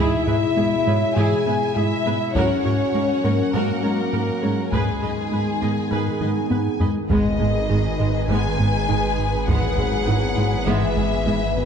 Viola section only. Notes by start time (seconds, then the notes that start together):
Already playing: E4 G#4
0.27 G#4 B4
0.57 G#4
0.87 G#4 B4
1.16 E4 G#4
1.46 G#4 B4
1.76 G#4
2.06 G#4 B4
2.35 F#4 A#4
2.65 A#4 C#5
2.94 A#4
3.24 A#4 C#5
3.53 F#4 A#4
3.83 A#4 C#5
4.13 A#4
4.42 A#4 C#5
4.72 G#4 B4
5.02 B4 D#5
5.32 B4
5.61 B4 D#5
5.91 G#4 B4
6.21 B4 D#5
6.51 B4
6.81 B4 D#5
7.10 G#3 B3
7.40 G#3
7.70 D#3 G#3
8.00 G#3
8.29 G#3 B3
8.59 G#3
8.88 D#3 G#3
9.48 G#3 B3
9.77 G#3
10.07 E3 G#3
10.37 G#3
10.66 G#3 B3
10.97 G#3
11.26 E3 G#3